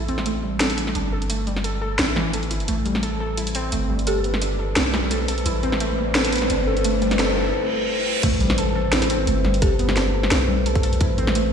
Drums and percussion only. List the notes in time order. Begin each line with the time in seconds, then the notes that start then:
0.08 closed hi-hat
0.18 snare
0.26 closed hi-hat
0.60 snare, closed hi-hat
0.70 open hi-hat
0.78 open hi-hat
0.87 snare
0.95 closed hi-hat
1.22 closed hi-hat
1.30 closed hi-hat
1.47 closed hi-hat
1.56 snare
1.64 closed hi-hat
1.99 snare, closed hi-hat
2.16 snare
2.33 closed hi-hat
2.43 open hi-hat
2.51 open hi-hat
2.60 closed hi-hat
2.68 closed hi-hat
2.86 closed hi-hat
2.95 snare
3.03 closed hi-hat
3.37 closed hi-hat
3.47 open hi-hat
3.55 open hi-hat
3.72 closed hi-hat
3.99 closed hi-hat
4.07 closed hi-hat
4.24 closed hi-hat
4.34 snare
4.42 closed hi-hat
4.76 snare, closed hi-hat
4.94 snare
5.11 closed hi-hat
5.28 open hi-hat
5.38 closed hi-hat
5.46 closed hi-hat
5.63 closed hi-hat
5.72 snare
5.80 closed hi-hat
6.15 snare, closed hi-hat
6.25 open hi-hat
6.33 open hi-hat
6.36 open hi-hat
6.38 snare, open hi-hat
6.50 closed hi-hat
6.77 closed hi-hat
6.84 closed hi-hat
7.02 closed hi-hat
7.11 snare, closed hi-hat
7.19 snare, closed hi-hat
8.23 kick, closed hi-hat, crash
8.40 closed hi-hat
8.50 snare
8.58 closed hi-hat
8.93 snare, closed hi-hat
9.02 snare, open hi-hat
9.10 open hi-hat
9.27 closed hi-hat
9.45 snare
9.54 closed hi-hat
9.62 kick, closed hi-hat
9.79 closed hi-hat
9.89 snare
9.97 snare, closed hi-hat
10.23 snare
10.31 snare, closed hi-hat
10.66 closed hi-hat
10.75 kick, open hi-hat
10.83 open hi-hat
10.93 closed hi-hat
11.01 kick, closed hi-hat
11.18 closed hi-hat
11.27 snare
11.35 closed hi-hat